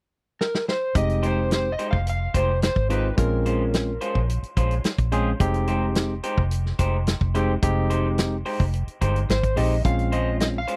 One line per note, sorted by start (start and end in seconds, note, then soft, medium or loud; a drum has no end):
0.41 0.66 A#4 medium
0.41 snare medium
0.55 snare medium
0.68 0.94 C5 medium
0.68 snare medium
0.95 1.74 F1 medium
0.95 1.68 G#3 medium
0.95 1.68 C4 medium
0.95 1.68 D#4 medium
0.95 1.68 G4 medium
0.95 1.25 D#5 medium
0.95 kick loud
0.95 closed hi-hat medium
1.10 closed hi-hat soft
1.23 1.40 G#3 medium
1.23 1.40 D#4 medium
1.23 1.40 G4 medium
1.23 1.40 C5 medium
1.23 1.53 C5 medium
1.23 closed hi-hat medium
1.51 1.72 C5 medium
1.51 snare loud
1.51 closed hi-hat medium
1.72 1.88 D#5 medium
1.79 1.96 G#3 medium
1.79 1.96 D#4 medium
1.79 1.96 G4 medium
1.79 1.96 C5 medium
1.79 closed hi-hat medium
1.91 2.26 F1 medium
1.91 2.07 F5 medium
1.91 kick medium
2.07 2.37 F5 medium
2.07 closed hi-hat medium
2.34 2.68 F1 medium
2.34 2.52 G#3 soft
2.34 2.52 D#4 medium
2.34 2.52 G4 medium
2.34 2.51 C5 medium
2.34 2.63 C5 medium
2.34 kick medium
2.34 closed hi-hat medium
2.62 2.91 C5 medium
2.62 snare loud
2.62 closed hi-hat medium
2.76 3.10 G#1 medium
2.76 kick medium
2.89 3.08 G#3 medium
2.89 3.08 C4 medium
2.89 3.08 D#4 medium
2.89 3.07 D#4 medium
2.89 3.08 F4 medium
2.89 3.07 G4 medium
2.89 3.17 B4 medium
2.89 3.07 C5 medium
2.89 closed hi-hat medium
3.17 3.97 A#1 loud
3.17 3.90 G#3 medium
3.17 3.90 C4 medium
3.17 3.91 C#4 medium
3.17 3.91 F4 medium
3.17 4.26 A#4 medium
3.17 kick loud
3.17 closed hi-hat medium
3.46 3.63 G#3 medium
3.46 3.63 C#4 medium
3.46 3.63 F4 medium
3.46 3.63 C5 medium
3.46 closed hi-hat medium
3.74 snare loud
3.74 closed hi-hat medium
4.01 4.19 G#3 medium
4.01 4.19 C#4 medium
4.01 4.18 F4 medium
4.01 4.18 C5 medium
4.01 closed hi-hat medium
4.15 4.38 A#1 medium
4.15 kick medium
4.29 closed hi-hat medium
4.43 muted fingered electric bass stroke soft
4.43 closed hi-hat soft
4.57 4.79 A#1 medium
4.57 4.74 G#3 medium
4.57 4.74 C#4 medium
4.57 4.74 F4 medium
4.57 4.74 C5 medium
4.57 kick medium
4.57 closed hi-hat medium
4.71 closed hi-hat soft
4.84 snare medium
4.84 closed hi-hat medium
4.98 5.32 A#1 medium
4.98 kick medium
4.98 closed hi-hat soft
5.12 5.30 G#3 medium
5.12 5.30 C4 medium
5.12 5.31 C#4 medium
5.12 5.30 C#4 medium
5.12 5.29 F4 medium
5.12 5.31 G#4 medium
5.12 5.29 C5 medium
5.12 closed hi-hat medium
5.40 6.19 F1 medium
5.40 6.13 G#3 medium
5.40 6.13 C4 medium
5.40 6.13 D#4 medium
5.40 6.13 G4 medium
5.40 kick loud
5.40 closed hi-hat medium
5.54 closed hi-hat soft
5.67 5.86 G#3 medium
5.67 5.85 D#4 medium
5.67 5.85 G4 medium
5.67 5.85 C5 medium
5.67 closed hi-hat medium
5.95 snare loud
5.95 closed hi-hat medium
6.23 6.41 G#3 medium
6.23 6.41 D#4 medium
6.23 6.41 G4 medium
6.23 6.40 C5 medium
6.23 closed hi-hat medium
6.38 6.71 F1 medium
6.38 kick medium
6.51 closed hi-hat medium
6.66 snare soft
6.79 7.13 F1 medium
6.79 6.97 G#3 medium
6.79 6.97 D#4 medium
6.79 6.96 G4 medium
6.79 6.96 C5 medium
6.79 kick medium
6.79 closed hi-hat medium
7.07 snare medium
7.07 closed hi-hat medium
7.21 7.55 F1 medium
7.21 kick medium
7.34 7.53 G#3 medium
7.34 7.52 G#3 medium
7.34 7.53 C4 medium
7.34 7.54 D#4 medium
7.34 7.52 D#4 medium
7.34 7.52 G4 medium
7.34 7.54 G4 medium
7.34 7.52 C5 medium
7.34 closed hi-hat medium
7.62 8.42 F1 loud
7.62 8.35 G#3 medium
7.62 8.35 C4 medium
7.62 8.36 D#4 medium
7.62 8.36 G4 medium
7.62 kick loud
7.62 closed hi-hat medium
7.90 8.08 G#3 medium
7.90 8.08 D#4 medium
7.90 8.07 G4 medium
7.90 8.07 C5 medium
7.90 closed hi-hat medium
8.18 snare loud
8.18 closed hi-hat medium
8.46 8.63 G#3 medium
8.46 8.63 D#4 medium
8.46 8.63 G4 medium
8.46 8.63 C5 medium
8.46 open hi-hat medium
8.60 8.82 F1 medium
8.60 kick medium
8.73 closed hi-hat medium
8.87 muted fingered electric bass stroke soft
8.87 closed hi-hat soft
9.01 9.27 G1 medium
9.01 9.19 G#3 medium
9.01 9.19 D#4 medium
9.01 9.18 G4 medium
9.01 9.18 C5 medium
9.01 kick medium
9.01 closed hi-hat medium
9.16 closed hi-hat soft
9.29 9.54 G#1 medium
9.29 9.59 C5 medium
9.29 snare loud
9.29 closed hi-hat medium
9.43 kick medium
9.43 closed hi-hat soft
9.56 9.82 A#1 medium
9.56 9.75 G#3 medium
9.56 9.75 C4 medium
9.56 9.75 D#4 medium
9.56 9.74 D#4 medium
9.56 9.74 G4 medium
9.56 9.76 G4 medium
9.56 9.74 C5 medium
9.56 9.85 D#5 medium
9.56 open hi-hat medium
9.84 10.64 A#1 medium
9.84 10.57 G#3 medium
9.84 10.58 C4 medium
9.84 10.58 C#4 medium
9.84 10.58 F4 medium
9.84 10.14 F5 medium
9.84 kick medium
9.84 closed hi-hat medium
9.99 closed hi-hat soft
10.12 10.30 G#3 medium
10.12 10.30 C#4 medium
10.12 10.30 F4 medium
10.12 10.29 C5 medium
10.12 10.39 D#5 medium
10.12 closed hi-hat medium
10.40 10.46 D#5 medium
10.40 snare medium
10.40 closed hi-hat medium
10.58 10.76 F5 medium
10.68 10.76 G#3 medium
10.68 10.76 C#4 medium
10.68 10.76 F4 medium
10.68 10.76 C5 medium
10.68 closed hi-hat medium